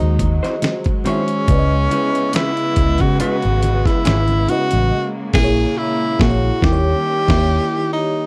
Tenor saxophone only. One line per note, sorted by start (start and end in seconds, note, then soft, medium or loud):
0.00 0.60 D#4 medium
1.07 2.37 C#4 loud
2.35 3.03 E4 medium
3.01 3.20 F#4 loud
3.20 3.88 F#4 medium
3.86 4.51 E4 loud
4.50 5.09 F#4 loud
5.34 5.79 G#4 loud
5.78 6.23 E4 loud
6.21 6.66 F#4 loud
6.64 7.92 G4 loud
7.93 8.26 D#4 medium